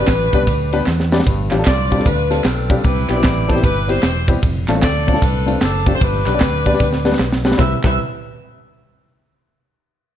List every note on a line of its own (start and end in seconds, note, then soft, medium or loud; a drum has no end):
0.00 0.29 G2 medium
0.00 0.10 G3 medium
0.00 0.10 B3 medium
0.00 0.83 D4 medium
0.00 0.10 D4 medium
0.00 0.83 G4 medium
0.00 0.10 G4 medium
0.00 0.88 B4 loud
0.00 0.10 B4 medium
0.07 0.29 A1 loud
0.07 kick loud
0.07 snare loud
0.07 clap loud
0.07 ride medium
0.07 tambourine loud
0.33 0.45 C2 medium
0.33 0.42 G3 medium
0.33 0.42 B3 medium
0.33 0.42 D4 medium
0.33 0.42 G4 medium
0.33 0.42 B4 loud
0.33 kick loud
0.33 ride medium
0.33 tambourine medium
0.47 0.81 D2 loud
0.47 kick loud
0.47 ride medium
0.47 tambourine medium
0.72 0.81 G3 medium
0.72 0.81 B3 medium
0.72 0.81 D4 medium
0.72 0.81 G4 medium
0.72 0.81 B4 loud
0.72 ride medium
0.72 tambourine medium
0.86 1.20 E2 loud
0.86 snare medium
0.86 clap medium
0.86 tambourine medium
1.00 snare medium
1.11 1.20 G3 loud
1.11 1.20 B3 medium
1.11 1.21 D4 medium
1.11 1.21 G4 medium
1.11 1.21 D5 loud
1.11 snare loud
1.11 tambourine medium
1.20 snare loud
1.25 1.48 G1 loud
1.25 1.87 G2 medium
1.25 kick loud
1.25 ride medium
1.25 tambourine medium
1.51 1.64 A1 loud
1.51 1.55 G3 medium
1.51 1.55 C4 medium
1.51 1.55 D4 medium
1.51 1.55 F4 medium
1.51 1.56 G4 medium
1.51 clap medium
1.51 ride medium
1.51 tambourine medium
1.58 1.68 G3 medium
1.58 1.67 C4 medium
1.58 1.68 D4 medium
1.58 1.68 F4 medium
1.58 1.68 A4 medium
1.65 2.00 C2 loud
1.65 2.04 F4 medium
1.65 2.03 D5 loud
1.65 kick loud
1.65 snare loud
1.65 clap loud
1.65 ride medium
1.65 tambourine loud
1.90 1.95 G3 medium
1.90 1.95 C4 medium
1.90 1.95 D4 medium
1.90 1.96 F4 medium
1.90 1.96 G4 medium
1.90 kick medium
1.90 ride medium
1.90 tambourine medium
1.99 2.07 G3 medium
1.99 2.07 C4 medium
1.99 2.08 D4 medium
1.99 2.08 F4 medium
1.99 2.08 A4 medium
1.99 snare soft
2.05 2.39 D2 loud
2.05 2.80 D4 medium
2.05 2.44 F4 medium
2.05 2.45 B4 loud
2.05 kick loud
2.05 ride medium
2.05 tambourine medium
2.30 2.39 G3 medium
2.30 2.39 C4 medium
2.30 2.39 D4 medium
2.30 2.39 F4 medium
2.30 2.39 A4 medium
2.30 snare soft
2.30 ride medium
2.30 tambourine medium
2.44 2.78 B1 loud
2.44 2.82 C4 medium
2.44 2.82 F4 medium
2.44 2.84 A4 medium
2.44 snare loud
2.44 clap medium
2.44 ride medium
2.44 tambourine medium
2.69 2.78 G3 medium
2.69 2.78 C4 medium
2.69 2.78 D4 medium
2.69 2.79 F4 medium
2.69 2.78 G4 medium
2.69 kick loud
2.69 ride medium
2.69 tambourine medium
2.83 3.06 C2 loud
2.83 3.45 C3 medium
2.83 3.60 E4 medium
2.83 3.09 G4 medium
2.83 3.08 B4 loud
2.83 kick loud
2.83 ride medium
2.83 tambourine medium
3.09 3.24 B1 loud
3.09 3.13 G3 medium
3.09 3.13 B3 medium
3.09 3.14 C4 medium
3.09 3.13 E4 medium
3.09 3.14 G4 medium
3.09 3.64 G4 medium
3.09 3.63 B4 medium
3.09 3.49 D5 loud
3.09 clap medium
3.09 ride medium
3.09 tambourine medium
3.16 3.25 G3 medium
3.16 3.25 B3 medium
3.16 3.26 C4 medium
3.16 3.26 E4 medium
3.16 3.26 G4 medium
3.23 3.58 A1 medium
3.23 kick loud
3.23 snare loud
3.23 clap loud
3.23 ride medium
3.23 tambourine loud
3.48 3.52 G3 medium
3.48 3.53 B3 medium
3.48 3.53 C4 medium
3.48 3.53 E4 medium
3.48 3.53 A4 medium
3.48 3.63 C5 loud
3.48 kick medium
3.48 ride medium
3.48 tambourine medium
3.54 3.64 G3 medium
3.54 3.65 B3 medium
3.54 3.65 C4 medium
3.54 3.65 E4 medium
3.54 3.65 G4 medium
3.54 snare soft
3.63 3.97 G1 loud
3.63 3.89 E4 medium
3.63 3.90 G4 medium
3.63 3.87 B4 loud
3.63 kick loud
3.63 ride medium
3.63 tambourine medium
3.88 3.97 G3 medium
3.88 3.97 B3 medium
3.88 3.97 C4 medium
3.88 3.97 E4 medium
3.88 4.40 E4 medium
3.88 3.97 G4 medium
3.88 4.40 G4 medium
3.88 4.29 C5 medium
3.88 snare soft
3.88 ride medium
3.88 tambourine medium
4.03 4.37 E1 medium
4.03 snare loud
4.03 clap medium
4.03 ride medium
4.03 tambourine medium
4.28 4.36 G3 medium
4.28 4.37 B3 medium
4.28 4.37 C4 medium
4.28 4.37 E4 medium
4.28 4.37 G4 medium
4.28 kick loud
4.28 ride medium
4.28 tambourine medium
4.43 4.64 F1 loud
4.43 kick loud
4.43 ride medium
4.43 tambourine medium
4.68 4.80 A1 medium
4.68 4.72 A3 medium
4.68 4.72 C4 medium
4.68 4.72 D4 medium
4.68 4.72 F4 medium
4.68 4.72 A4 medium
4.68 clap medium
4.68 ride medium
4.68 tambourine medium
4.75 4.84 A3 medium
4.75 4.84 C4 medium
4.75 4.84 D4 medium
4.75 4.84 F4 medium
4.75 4.85 A4 medium
4.82 5.16 D2 medium
4.82 5.58 A4 medium
4.82 5.19 D5 loud
4.82 kick loud
4.82 snare loud
4.82 clap loud
4.82 ride medium
4.82 tambourine loud
5.07 5.11 A3 medium
5.07 5.11 C4 medium
5.07 5.12 D4 medium
5.07 5.12 F4 medium
5.07 5.12 A4 medium
5.07 kick medium
5.07 ride medium
5.07 tambourine medium
5.13 5.23 A3 medium
5.13 5.23 C4 medium
5.13 5.23 D4 medium
5.13 5.23 F4 medium
5.13 5.23 A4 medium
5.13 snare soft
5.22 5.55 C2 loud
5.22 5.62 D4 medium
5.22 5.62 B4 loud
5.22 kick loud
5.22 ride medium
5.22 tambourine medium
5.46 5.55 A3 medium
5.46 5.55 C4 medium
5.46 5.55 D4 medium
5.46 5.55 F4 medium
5.46 5.55 A4 medium
5.46 ride medium
5.46 tambourine medium
5.61 5.95 F#1 loud
5.61 5.99 C4 medium
5.61 5.99 D4 medium
5.61 5.94 A4 loud
5.61 snare loud
5.61 clap medium
5.61 ride medium
5.61 tambourine medium
5.87 5.95 A3 medium
5.87 5.95 C4 medium
5.87 5.95 D4 medium
5.87 5.95 F4 medium
5.87 5.95 G4 medium
5.87 kick loud
5.87 ride medium
5.87 tambourine medium
5.95 6.01 C5 loud
6.01 6.22 G1 loud
6.01 6.62 G2 medium
6.01 7.16 D4 medium
6.01 7.17 G4 medium
6.01 7.20 B4 loud
6.01 kick loud
6.01 ride medium
6.01 tambourine medium
6.26 6.38 B1 loud
6.26 6.30 G3 medium
6.26 6.31 B3 medium
6.26 6.30 D4 medium
6.26 6.31 G4 medium
6.26 6.31 B4 medium
6.26 clap medium
6.26 ride medium
6.26 tambourine soft
6.34 6.43 G3 medium
6.34 6.42 B3 medium
6.34 6.43 D4 medium
6.34 6.43 G4 medium
6.34 6.43 D5 medium
6.40 6.74 D2 loud
6.40 kick loud
6.40 snare loud
6.40 clap loud
6.40 ride medium
6.40 tambourine loud
6.66 6.70 G3 medium
6.66 6.70 B3 medium
6.66 6.70 D4 medium
6.66 6.70 G4 medium
6.66 6.70 D5 loud
6.66 kick medium
6.66 ride medium
6.66 tambourine medium
6.73 6.82 G3 medium
6.73 6.82 B3 medium
6.73 6.82 D4 medium
6.73 6.82 G4 medium
6.73 6.82 D5 loud
6.73 snare soft
6.80 7.13 D2 loud
6.80 kick loud
6.80 snare medium
6.80 tambourine medium
6.93 snare medium
7.05 7.13 G3 medium
7.05 7.13 B3 medium
7.05 7.13 D4 medium
7.05 7.13 G4 medium
7.05 7.13 B4 medium
7.05 snare medium
7.05 tambourine medium
7.12 snare medium
7.19 7.53 B1 loud
7.19 snare medium
7.19 clap medium
7.19 tambourine medium
7.32 snare medium
7.44 7.53 G3 loud
7.44 7.53 B3 medium
7.44 7.53 D4 medium
7.44 7.53 G4 medium
7.44 7.53 B4 loud
7.44 snare loud
7.44 tambourine medium
7.52 snare loud
7.58 7.73 C2 medium
7.58 7.73 C2 loud
7.58 7.73 C4 medium
7.58 7.73 E4 medium
7.58 7.73 G4 medium
7.58 7.72 B4 medium
7.58 7.73 E5 medium
7.58 kick loud
7.58 snare loud
7.58 clap medium
7.84 7.97 C2 loud
7.84 7.97 C2 medium
7.84 7.97 C4 medium
7.84 7.97 E4 medium
7.84 7.97 G4 medium
7.84 7.97 B4 medium
7.84 7.98 E5 medium
7.84 kick loud
7.84 clap medium
7.84 crash medium